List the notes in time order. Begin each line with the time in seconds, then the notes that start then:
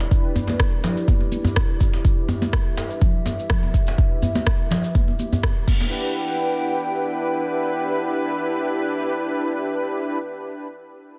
Already playing: E4 G4 D5
0.00 djembe slap, cabasa
0.11 D4 E4 G4 B4, kick, cabasa
0.36 djembe bass, cabasa
0.47 djembe tone, high conga, cabasa
0.60 kick, cross-stick, cabasa
0.84 D4 E4 G4 B4, djembe slap, low conga, cabasa
0.97 cabasa
1.08 kick, djembe tone, high conga, cabasa
1.21 djembe tone
1.32 high conga, cabasa
1.44 djembe bass, cabasa
1.56 kick, cross-stick, djembe tone, cabasa
1.80 kick, djembe tone, cabasa
1.94 djembe slap, cabasa
2.05 D4 E4 G4 B4 E5, kick, cabasa
2.29 djembe bass, cabasa
2.42 high conga, djembe tone, cabasa
2.53 kick, cross-stick, cabasa
2.77 D4 E4 G4 B4, djembe slap, cabasa
2.90 cabasa
3.02 kick, low conga, cabasa
3.26 djembe tone, cabasa
3.39 cabasa
3.50 D4 E4 G4 B4, kick, cross-stick, low conga, cabasa
3.63 djembe tone
3.74 kick, cabasa
3.87 djembe slap, cabasa
3.98 D4 E4 G4 B4, kick, cabasa
4.22 djembe bass, cabasa
4.35 high conga, djembe tone, cabasa
4.46 kick, cross-stick, cabasa
4.71 D4 E4 G4 B4, djembe slap, low conga, cabasa
4.84 cabasa
4.95 kick, high conga, djembe tone, cabasa
5.08 djembe tone
5.19 high conga, cabasa
5.33 djembe bass, cabasa
5.43 kick, cross-stick, djembe tone, cabasa
5.67 D4 E4 G4 B4 F#5 G5, kick, crash, djembe tone, high conga, cabasa
5.81 djembe slap, high conga, cabasa